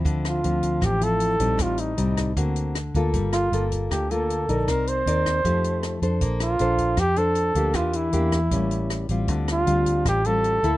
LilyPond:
<<
  \new Staff \with { instrumentName = "Flugelhorn" } { \time 4/4 \key d \minor \tempo 4 = 156 r8 f'4. g'8 a'4. | f'8 ees'4. r2 | r8 f'4 r8 g'8 a'4. | bes'8 c''2. r8 |
r8 f'4. g'8 a'4. | f'8 e'2. r8 | r8 f'4. g'8 a'4. | }
  \new Staff \with { instrumentName = "Nylon-string guitar" } { \time 4/4 \key d \minor << { <f c' e'>4 <f c'>4. <f c' e'>4 <g c' ees'>8~ | <g c' ees'>4 <g c' ees'>4 <ais c' fis'>4 r8 <ais eis' a'>8~ | <ais eis' a'>4 <bes f' a'>4. <bes f' a'>4 <ees' bes' d''>8~ | <ees' bes' d''>4 <ees' bes' d''>4 <a ees' g'>4. <d' a' c''>8~ |
<d' a' c''>4 <d' a' c''>4 r8 <d' a' c''>4 <bes d' g'>8~ | <bes d' g'>4 <bes d' g'>8 r8 <g bes cis'>4. <g c' f'>8~ | <g c' f'>4 <g c' f'>4. <g c' f'>4 <bes e' a'>8 | } \\ { d2 a,2 | a,2 d2 | g2 d2 | c'2 f2 |
bes2 f2 | e2 a,2 | d2 a,2 | } >> }
  \new Staff \with { instrumentName = "Fingered electric bass" } { \clef bass \time 4/4 \key d \minor d,4 d,4 a,,4. bes,,8 | a,,4 c,4 d,4. d,8 | g,,4 g,,4 d,4. bes,,8 | c,4 ees,4 f,4. f,8 |
bes,,4 bes,,4 f,4. d,8 | e,4 e,4 a,,4. a,,8 | d,4 d,4 a,,4. d,8 | }
  \new DrumStaff \with { instrumentName = "Drums" } \drummode { \time 4/4 <hh bd>8 <hh ss>8 hh8 <hh bd>8 <hh bd ss>8 hh8 hh8 <hh bd>8 | <hh bd ss>8 hh8 hh8 <hh bd ss>8 <hh bd>8 hh8 <hh ss>8 <hh bd>8 | <hh bd>8 <hh ss>8 hh8 <hh bd>8 <hh bd ss>8 hh8 hh8 <hh bd>8 | <hh bd ss>8 hh8 hh8 <hh bd ss>8 <hh bd>8 hh8 <hh ss>8 <hh bd>8 |
<hh bd>8 <hh ss>8 hh8 <hh bd>8 <hh bd ss>8 hh8 hh8 <hh bd>8 | <hh bd ss>8 hh8 hh8 <hh bd ss>8 <hh bd>8 hh8 <hh ss>8 <hh bd>8 | <hh bd>8 <hh ss>8 hh8 <hh bd>8 <hh bd ss>8 hh8 hh8 <hh bd>8 | }
>>